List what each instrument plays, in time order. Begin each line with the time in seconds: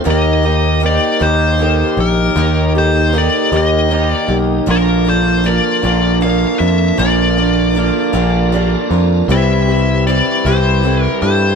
0.04 picked electric bass D#2, steel-string acoustic guitar D#3 A#3 D#4 G4, tonewheel organ A#3 D#4 G4 A#4, reed electric piano D#4 G4 A#4
0.10 lead electric guitar D#5
0.43 steel-string acoustic guitar A#3 D#4 G4, reed electric piano D#4 G4 A#4
0.80 steel-string acoustic guitar D#3 A#3 D#4 G4, reed electric piano D#4
0.84 reed electric piano G4 C5, lead electric guitar D5
1.20 picked electric bass D#2, steel-string acoustic guitar D#3 A#3 D#4 G4, lead electric guitar C5
1.58 steel-string acoustic guitar D#3 A#3 D#4 G4, reed electric piano D#4 G4 A4
1.97 picked electric bass A#1, steel-string acoustic guitar A#3 D#4 G4, reed electric piano D#4 G4, lead electric guitar A#4
2.01 reed electric piano A#4
2.35 picked electric bass D#2, steel-string acoustic guitar D#3 A#3 D#4 G4, tonewheel organ A#3 D#4 G4
2.75 steel-string acoustic guitar A#3 D#4 G4, reed electric piano D#4 G4 A4, lead electric guitar C5
3.13 steel-string acoustic guitar D#3 A#3 D#4 G4, reed electric piano D#4 G4 A4
3.18 lead electric guitar D5
3.52 picked electric bass D#2, steel-string acoustic guitar D#3 A#3 D#4 G4
3.57 lead electric guitar D#5
3.89 steel-string acoustic guitar D#3 A#3 D#4 G4, reed electric piano D#4 G4 C5
4.11 lead electric guitar D5
4.27 picked electric bass B1, steel-string acoustic guitar A#3 D#4 G4, reed electric piano D#4 G4
4.31 reed electric piano A#4
4.66 picked electric bass A#1, steel-string acoustic guitar A#2 F3 A#3 D4 F4, clean electric guitar D3, tonewheel organ A#3 D4 F4 A#4, reed electric piano D4 F4 A#4
4.71 lead electric guitar A#4
5.05 steel-string acoustic guitar A#3 D4 F4, reed electric piano D4 F4 A4
5.09 lead electric guitar C5
5.44 clean electric guitar D3, steel-string acoustic guitar F3 A#3 D4 F4, reed electric piano D4 F4, lead electric guitar D5
5.48 reed electric piano A#4
5.83 picked electric bass A#1, steel-string acoustic guitar A#2 F3 A#3 D4 F4, clean electric guitar D3
6.21 clean electric guitar D3, steel-string acoustic guitar F3 A#3 D4 F4, reed electric piano D4 F4, lead electric guitar F5
6.25 reed electric piano A#4
6.59 picked electric bass F2, steel-string acoustic guitar A#3 D4 F4, reed electric piano D4, lead electric guitar E5
6.63 reed electric piano F4 C5
6.98 picked electric bass A#1, steel-string acoustic guitar A#2 F3 A#3 D4 F4, clean electric guitar D3, tonewheel organ A#3 D4 F4, lead electric guitar D5
7.36 steel-string acoustic guitar A#3 D4 F4, reed electric piano D4 F4 A#4
7.74 clean electric guitar D3, steel-string acoustic guitar F3 A#3 D4 F4, reed electric piano D4 F4 A#4
8.13 picked electric bass A#1, steel-string acoustic guitar A#2 F3 A#3 D4 F4, clean electric guitar D3
8.52 clean electric guitar D3, steel-string acoustic guitar F3 A#3 D4 F4, reed electric piano D4 F4 G4
8.90 picked electric bass F2, steel-string acoustic guitar A#3 D4 F4, reed electric piano D4 F4 A#4
9.27 picked electric bass C2, steel-string acoustic guitar C3 G3 C4 E4 G4, clean electric guitar E3, tonewheel organ C4 E4 G4 C5, reed electric piano E4 G4 C5
9.32 lead electric guitar E5
9.67 steel-string acoustic guitar C4 E4 G4, reed electric piano E4 G4 C5
9.71 clean electric guitar G3
10.05 clean electric guitar E3, steel-string acoustic guitar G3 C4 E4, reed electric piano E4 G4 C5, lead electric guitar D5
10.09 steel-string acoustic guitar G4
10.45 picked electric bass C2, steel-string acoustic guitar C3 G3 C4 E4 G4, clean electric guitar E3, lead electric guitar C5
10.82 clean electric guitar E3, steel-string acoustic guitar G3 C4 E4, reed electric piano E4 G4 A4
10.86 steel-string acoustic guitar G4
11.04 lead electric guitar A#4
11.21 picked electric bass G2, steel-string acoustic guitar C4 E4 G4, reed electric piano E4 G4 A4, lead electric guitar C5